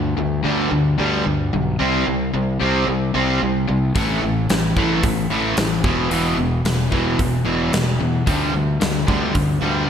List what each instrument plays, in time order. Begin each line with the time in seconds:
Already playing: fingered electric bass D2, overdriven electric guitar G2 D3
0.17 fingered electric bass D2, overdriven electric guitar G2 D3
0.43 fingered electric bass D2, overdriven electric guitar G2 D3 G3
0.71 fingered electric bass D2, overdriven electric guitar G2 D3
0.98 fingered electric bass D2, overdriven electric guitar G2 D3 G3
1.24 fingered electric bass D2, overdriven electric guitar G2 D3
1.53 fingered electric bass B1, overdriven electric guitar G2 D3
1.79 fingered electric bass C2, overdriven electric guitar C3 G3 C4
2.07 fingered electric bass C2, overdriven electric guitar C3 G3
2.34 fingered electric bass C2, overdriven electric guitar C3 G3
2.60 fingered electric bass C2, overdriven electric guitar C3 G3 C4
2.88 fingered electric bass C2, overdriven electric guitar C3 G3
3.14 fingered electric bass C2, overdriven electric guitar C3 G3 C4
3.41 fingered electric bass C2, overdriven electric guitar C3 G3
3.67 fingered electric bass C2, overdriven electric guitar C3 G3
3.95 fingered electric bass A1, overdriven electric guitar A2 E3 A3, kick, open hi-hat
4.22 fingered electric bass A1, overdriven electric guitar A2 E3
4.50 fingered electric bass A1, overdriven electric guitar A2 E3, snare, open hi-hat
4.77 fingered electric bass A1, overdriven electric guitar A2 E3 A3, kick
5.03 fingered electric bass A1, overdriven electric guitar A2 E3, kick, open hi-hat
5.30 fingered electric bass A1, overdriven electric guitar A2 E3 A3
5.57 fingered electric bass A1, overdriven electric guitar A2 E3, snare, open hi-hat
5.84 fingered electric bass E1, overdriven electric guitar E2 B2 E3, kick
6.11 fingered electric bass E1, overdriven electric guitar E2 B2 E3, open hi-hat
6.37 fingered electric bass E1, overdriven electric guitar E2 B2
6.65 fingered electric bass E1, overdriven electric guitar E2 B2, snare, open hi-hat
6.91 fingered electric bass E1, overdriven electric guitar E2 B2 E3, kick
7.19 fingered electric bass E1, overdriven electric guitar E2 B2, kick, open hi-hat
7.45 fingered electric bass E1, overdriven electric guitar E2 B2 E3
7.72 fingered electric bass E1, overdriven electric guitar E2 B2, snare, open hi-hat
8.00 overdriven electric guitar E2 B2, fingered electric bass E2
8.26 fingered electric bass D2, overdriven electric guitar G2 D3 G3, kick, open hi-hat
8.53 fingered electric bass D2, overdriven electric guitar G2 D3
8.80 fingered electric bass D2, overdriven electric guitar G2 D3, snare, open hi-hat
9.07 fingered electric bass D2, overdriven electric guitar G2 D3 G3, kick
9.34 fingered electric bass D2, overdriven electric guitar G2 D3, kick, open hi-hat
9.62 fingered electric bass D2, overdriven electric guitar G2 D3 G3